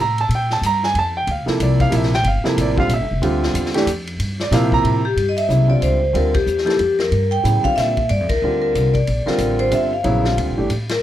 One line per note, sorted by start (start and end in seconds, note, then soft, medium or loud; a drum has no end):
0.00 0.28 A2 medium
0.00 0.19 A#5 loud
0.18 0.32 A5 loud
0.18 ride soft
0.29 0.61 A#2 medium
0.29 ride medium
0.35 0.52 G5 medium
0.50 0.64 A5 medium
0.50 snare soft
0.61 0.94 G2 medium
0.61 hi-hat pedal medium
0.61 ride medium
0.66 0.84 A#5 loud
0.84 0.96 G#5 loud
0.84 snare soft
0.94 1.26 F2 medium
0.94 ride medium
0.99 1.16 A5 loud
1.17 1.28 G5 medium
1.27 1.46 D2 medium
1.27 ride medium
1.31 1.49 F5 medium
1.46 1.89 C3 medium
1.46 1.89 F3 medium
1.46 1.90 A#3 medium
1.46 1.90 E4 medium
1.46 1.61 A4 medium
1.46 muted upright bass stroke soft
1.46 snare soft
1.60 1.91 C2 medium
1.60 1.81 D5 medium
1.60 hi-hat pedal medium
1.60 ride medium
1.80 1.93 F5 loud
1.80 kick medium
1.80 ride medium
1.90 2.23 A#1 medium
1.90 2.09 C3 medium
1.90 2.10 F3 medium
1.90 2.10 A#3 medium
1.90 2.10 E4 medium
1.90 hi-hat pedal soft
1.90 ride medium
1.95 2.13 E5 medium
2.03 snare soft
2.14 2.26 G5 loud
2.14 snare soft
2.23 2.43 G1 medium
2.23 ride medium
2.28 2.46 F5 medium
2.44 2.75 C3 medium
2.44 2.75 F3 medium
2.44 2.76 A#3 medium
2.44 2.76 E4 medium
2.44 2.58 A4 medium
2.44 snare soft
2.57 2.88 A1 medium
2.57 hi-hat pedal medium
2.57 ride medium
2.61 2.79 D5 medium
2.76 2.88 D3 medium
2.76 2.89 G3 medium
2.76 2.89 C4 medium
2.76 2.89 F4 medium
2.76 2.91 F5 loud
2.76 kick medium
2.89 3.00 A#1 medium
2.89 hi-hat pedal medium
2.89 ride medium
2.94 3.53 E5 medium
3.00 3.11 G1 medium
3.11 3.21 F1 medium
3.22 3.53 D2 medium
3.22 3.71 D3 medium
3.22 3.71 G3 medium
3.22 3.71 C4 medium
3.22 3.71 F4 medium
3.22 ride medium
3.43 snare soft
3.54 3.85 E2 medium
3.54 hi-hat pedal medium
3.54 ride medium
3.66 snare soft
3.74 3.86 E3 medium
3.74 3.86 A3 medium
3.74 3.86 D4 medium
3.74 3.86 G4 medium
3.74 snare soft
3.74 ride medium
3.86 4.18 F2 medium
3.86 hi-hat pedal medium
3.86 ride medium
4.07 ride soft
4.19 4.50 G2 medium
4.19 ride medium
4.40 4.52 D5 medium
4.40 snare medium
4.51 4.83 A#2 medium
4.51 5.01 C3 medium
4.51 5.01 F3 medium
4.51 5.01 A#3 medium
4.51 5.01 E4 medium
4.51 4.73 F5 medium
4.51 snare soft
4.51 hi-hat pedal medium
4.51 ride medium
4.72 5.09 A#5 loud
4.72 kick medium
4.84 5.16 A2 medium
4.84 ride medium
5.05 5.27 G4 medium
5.16 5.48 G2 medium
5.16 ride medium
5.29 5.37 D#5 medium
5.37 5.71 E5 medium
5.37 ride medium
5.49 5.81 C2 medium
5.49 5.67 C#3 medium
5.49 5.67 F#3 soft
5.49 5.67 B3 soft
5.49 5.68 E4 medium
5.49 hi-hat pedal soft
5.68 5.97 D3 medium
5.68 5.98 G3 medium
5.68 5.97 C4 medium
5.68 5.98 F4 medium
5.68 5.81 D5 medium
5.81 6.13 C#2 medium
5.81 6.12 C5 medium
5.81 hi-hat pedal soft
5.81 ride medium
6.13 6.46 D2 medium
6.13 6.32 D3 medium
6.13 6.33 G3 medium
6.13 6.33 C4 medium
6.13 6.33 F4 medium
6.13 6.36 A#4 medium
6.13 ride medium
6.34 6.65 G4 medium
6.34 kick medium
6.34 ride medium
6.46 6.78 E2 medium
6.46 hi-hat pedal medium
6.58 snare soft
6.65 6.77 F3 medium
6.65 6.78 A#3 medium
6.65 6.78 E4 medium
6.65 6.97 G4 medium
6.65 6.78 A4 medium
6.65 ride soft
6.69 snare soft
6.79 7.11 F2 medium
6.79 ride medium
6.99 7.33 A#4 medium
6.99 snare medium
7.11 7.43 G2 medium
7.11 ride medium
7.31 7.65 G5 medium
7.31 ride soft
7.43 7.63 A2 medium
7.43 7.62 C#3 medium
7.43 7.62 F#3 soft
7.43 7.63 B3 soft
7.43 7.63 E4 medium
7.43 hi-hat pedal medium
7.43 ride medium
7.63 7.93 D3 medium
7.63 7.93 G3 soft
7.63 7.93 C4 soft
7.63 7.93 F4 medium
7.63 7.77 F5 medium
7.63 muted upright bass stroke soft
7.63 kick medium
7.63 ride soft
7.76 8.09 A#2 medium
7.76 8.07 E5 medium
7.76 snare soft
7.76 hi-hat pedal soft
7.76 ride medium
7.97 kick soft
7.97 ride soft
8.09 8.20 G2 medium
8.09 8.19 D5 medium
8.09 ride medium
8.20 8.31 F2 medium
8.29 8.41 D2 medium
8.29 8.60 A#4 medium
8.29 kick medium
8.29 ride medium
8.42 8.74 D2 medium
8.42 8.92 D3 medium
8.42 8.92 G3 medium
8.42 8.92 C4 soft
8.42 8.92 F4 medium
8.62 8.96 A#4 medium
8.75 9.07 C2 medium
8.75 hi-hat pedal medium
8.75 ride medium
8.94 9.25 D5 medium
8.94 kick soft
8.94 ride soft
9.07 9.26 A#1 medium
9.07 ride medium
9.26 9.69 D3 medium
9.26 9.70 G3 medium
9.26 9.70 C4 medium
9.26 9.70 F4 medium
9.26 9.61 A#4 medium
9.26 muted upright bass stroke soft
9.26 snare soft
9.38 9.70 A1 medium
9.38 hi-hat pedal medium
9.38 ride medium
9.59 9.73 C5 medium
9.59 ride soft
9.71 10.03 G1 medium
9.71 9.90 D3 medium
9.71 9.90 G3 medium
9.71 9.90 C4 medium
9.71 9.90 F4 medium
9.71 9.91 E5 medium
9.71 hi-hat pedal medium
9.71 ride medium
9.93 10.35 F5 medium
10.04 10.36 A#1 medium
10.04 10.22 C#3 medium
10.04 10.23 F#3 medium
10.04 10.23 B3 medium
10.04 10.23 E4 medium
10.04 ride medium
10.24 10.53 D3 medium
10.24 10.54 G3 medium
10.24 10.53 C4 medium
10.24 10.54 F4 medium
10.24 snare soft
10.37 10.50 D2 medium
10.37 ride medium
10.49 10.58 A#1 medium
10.57 10.69 G1 medium
10.57 10.69 E3 medium
10.57 10.69 A3 medium
10.57 10.69 D4 medium
10.57 10.69 G4 medium
10.70 11.02 A2 medium
10.70 hi-hat pedal soft
10.70 ride medium
10.89 11.03 A#4 medium
10.89 snare medium
10.89 ride medium